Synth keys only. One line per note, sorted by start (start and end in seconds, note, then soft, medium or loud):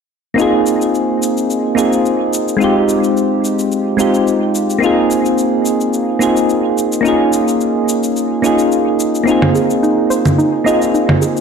0.34 1.72 A#3 medium
0.34 1.73 C4 medium
0.34 1.74 D#4 medium
0.40 1.75 F4 medium
0.40 1.76 G#4 medium
1.75 1.90 A#3 medium
1.75 1.91 C4 medium
1.75 1.91 D#4 medium
1.75 1.92 F4 medium
1.75 1.92 G#4 medium
2.57 3.94 G#3 medium
2.57 3.95 C4 medium
2.57 3.96 D#4 medium
2.62 3.97 F4 medium
2.62 3.98 G4 medium
3.97 4.12 G#3 medium
3.97 4.13 C4 medium
3.97 4.13 D#4 medium
3.97 4.14 F4 medium
3.97 4.14 G4 medium
4.79 6.16 A#3 medium
4.79 6.17 C4 medium
4.79 6.18 D#4 medium
4.84 6.19 F4 medium
4.84 6.20 G#4 medium
6.19 6.35 A#3 medium
6.19 6.35 C4 medium
6.19 6.36 D#4 medium
6.19 6.36 F4 medium
6.19 6.37 G#4 medium
7.01 8.39 A#3 medium
7.01 8.40 C#4 medium
7.01 8.41 D#4 medium
7.06 8.41 F4 medium
7.06 8.42 G#4 medium
8.42 8.57 A#3 medium
8.42 8.58 C#4 medium
8.42 8.58 D#4 medium
8.42 8.59 F4 medium
8.42 8.59 G#4 medium
9.24 10.61 A#3 medium
9.24 10.62 C4 medium
9.24 10.63 D#4 medium
9.29 10.64 F4 medium
9.29 10.65 G#4 medium
10.64 10.79 A#3 medium
10.64 10.80 C4 medium
10.64 10.80 D#4 medium
10.64 10.81 F4 medium
10.64 10.81 G#4 medium